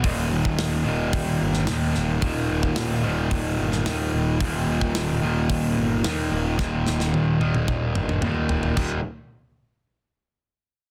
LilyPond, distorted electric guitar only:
\new Staff \with { instrumentName = "Distorted electric guitar" } { \clef bass \time 4/4 \key ees \major \tempo 4 = 110 <ees, bes, ees>4. <ees, bes, ees>4. <ees, bes, ees>4 | <ees, bes, ees>4. <ees, bes, ees>4. <ees, bes, ees>4 | <ees, bes, ees>4. <ees, bes, ees>4. <ees, bes, ees>4 | <ees, bes, ees>4. <ees, bes, ees>4. <ees, bes, ees>4 |
<ees, bes, ees>8 r2. r8 | }